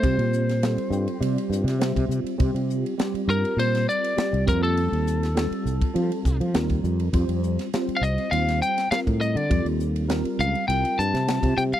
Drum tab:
RD |xx-xxx-xxx-xxx-x|xx-xxx-xxx-xxx-x|xx-xxx-xxx-xxx-x|xx-xxx-xxx-xxx-x|
HH |--p---p---p---p-|--p---p---p---p-|--p---p---p---p-|--p---p---p---p-|
SD |---oo------oo---|----o----o--o---|---oo-------o---|---oo----o-oo---|
BD |o------------o--|o-------------o-|-------o--o--o--|o------------o--|

RD |xx-xxx-xxx-xxx-x|
HH |--p---p---p---p-|
SD |----o------oo---|
BD |o------------o--|